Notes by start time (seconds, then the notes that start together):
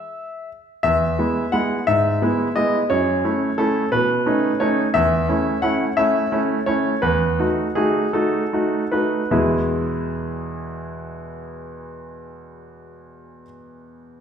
Already playing: E5
0.83 E2 E5
1.19 G#3 B3 E4
1.52 G#3 B3 E4 F#5
1.87 G#2 E5
2.22 G#3 B3 E4
2.56 G#3 B3 E4 D#5
2.90 F#2 C#5
3.24 A3 C#4 E4
3.58 A3 C#4 E4 A4
3.92 B2 B4
4.26 A3 C#4 D#4
4.60 A3 C#4 D#4 C#5
4.94 E2 E5
5.29 A3 C#4 E4
5.62 A3 C#4 E4 F#5
5.97 A3 C#4 E4 E5
6.32 A3 C#4 E4
6.66 A3 C#4 E4 C#5
7.02 E2 B4
7.39 A3 D#4 F#4
7.75 A3 D#4 F#4 G#4
8.13 A3 D#4 F#4 A4
8.53 A3 D#4 F#4
8.92 A3 D#4 F#4 B4
9.31 E2 B2 G#3 B3 E4 G#4 E5